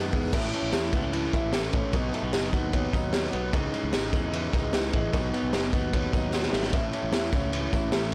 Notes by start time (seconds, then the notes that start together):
Already playing: G#2 D#3 G#3 B3 D#4
0.12 E2 G#3 B3 D#4, kick, open hi-hat, tambourine
0.32 A1 A2 E3 A3 C#4 E4, kick, crash, tambourine
0.52 A3 C#4 E4, ride, tambourine
0.63 A1
0.72 E2 E3 A3 C#4 E4, snare, ride, tambourine
0.92 C#2 A3 B3 C#4 E4, kick, ride, tambourine
1.03 C#4
1.12 A2 E3 A3 C#4 E4, ride
1.32 A1 A3 C#4 E4, kick, ride, tambourine
1.52 E3 A3 C#4 E4, snare, ride, tambourine
1.72 A1 A3 C#4 E4, kick, ride, tambourine
1.92 B1 B2 F#3 B3 D#4, kick, ride, tambourine
2.12 F#3 A3 B3 D#4, ride, tambourine
2.23 B1 B3
2.32 F#1 B2 F#3 B3 D#4, snare, ride, tambourine
2.52 D#2 F#3 B3 D#4, kick, ride, tambourine
2.72 B2 F#3 B3 D#4, kick, ride
2.92 D#2 F#3 B3 D#4, kick, ride, tambourine
3.12 B2 F#3 B3 D#4, snare, ride, tambourine
3.32 B1 F#3 B3 D#4, ride
3.52 C#2 C#3 E3 G#3 D#4, kick, ride, tambourine
3.72 E3 G#3 D#4, ride, tambourine
3.84 C#2
3.92 G#1 C#3 E3 G#3 D#4, snare, ride, tambourine
4.12 E2 E3 G#3 D#4, kick, ride, tambourine
4.32 C#3 E3 G#3 D#4, ride
4.52 C#2 E3 G#3 D#4, kick, ride, tambourine
4.71 C#2 C#3 E3 G#3 D#4, snare, ride, tambourine
4.91 A1 E3 G#3 D#4, kick, ride
5.12 B1 B2 F#3 B3 D#4, kick, ride, tambourine
5.32 F#3 B3 D#4, ride, tambourine
5.43 B1
5.52 F#1 B2 F#3 B3 D#4, snare, ride, tambourine
5.72 D#2 F#3 B3 D#4, kick, ride, tambourine
5.92 B2 F#3 B3 D#4, kick, ride
6.12 D#2 F#3 B3 D#4, kick, ride, tambourine
6.32 B2 F#3 B3 D#4, snare, tambourine
6.43 snare
6.51 G#1 F#3 A3 B3 D#4, snare, tambourine
6.63 B3, snare
6.72 A1 A2 E3 A3 C#4 E4, kick, ride, tambourine
6.91 A3 C#4 E4, ride, tambourine
7.03 A1
7.11 E2 E3 A3 C#4 E4, snare, ride, tambourine
7.31 C#2 A3 C#4 E4, kick, ride, tambourine
7.51 A2 E3 A3 C#4 E4, ride, tambourine
7.71 A1 A3 C#4 E4, kick, ride, tambourine
7.91 A1 E3 A3 C#4 E4, snare, ride, tambourine